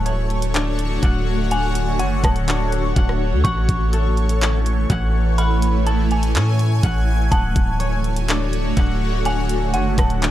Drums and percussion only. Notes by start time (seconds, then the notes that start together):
0.06 closed hi-hat
0.30 closed hi-hat
0.42 closed hi-hat
0.54 clap, closed hi-hat
0.79 closed hi-hat
1.03 kick, closed hi-hat
1.51 closed hi-hat
1.75 closed hi-hat
1.99 closed hi-hat
2.24 kick, cross-stick, closed hi-hat
2.36 closed hi-hat
2.48 clap, closed hi-hat
2.72 closed hi-hat
2.96 kick, closed hi-hat
3.09 cross-stick
3.45 kick, closed hi-hat
3.69 kick, closed hi-hat
3.93 closed hi-hat
4.17 closed hi-hat
4.29 closed hi-hat
4.41 clap, closed hi-hat
4.66 closed hi-hat
4.90 kick, closed hi-hat
5.38 closed hi-hat
5.62 closed hi-hat
5.87 closed hi-hat
6.11 closed hi-hat
6.23 closed hi-hat
6.35 clap, closed hi-hat
6.59 closed hi-hat
6.83 kick, closed hi-hat
7.32 kick, closed hi-hat
7.56 kick, closed hi-hat
7.80 closed hi-hat
8.04 closed hi-hat
8.16 closed hi-hat
8.28 clap, closed hi-hat
8.53 closed hi-hat
8.77 kick, closed hi-hat
9.25 closed hi-hat
9.49 closed hi-hat
9.74 closed hi-hat
9.98 kick, cross-stick, closed hi-hat
10.10 closed hi-hat
10.22 clap, closed hi-hat